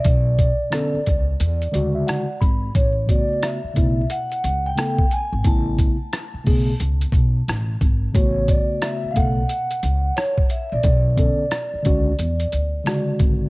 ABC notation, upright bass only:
X:1
M:4/4
L:1/16
Q:"Swing 16ths" 1/4=89
K:A
V:1 name="Upright bass" clef=bass
B,,,3 z3 C,,2 E,,2 D,,2 z2 G,,,2 | A,,,3 z3 B,,,2 z2 C,,2 z3 G,,, | A,,,3 z3 B,,,2 C,,2 B,,,2 A,,,2 G,,,2 | A,,,3 z3 B,,,2 z2 C,,2 z3 _B,,, |
B,,,3 z3 C,,2 E,,2 D,,2 z2 G,,,2 |]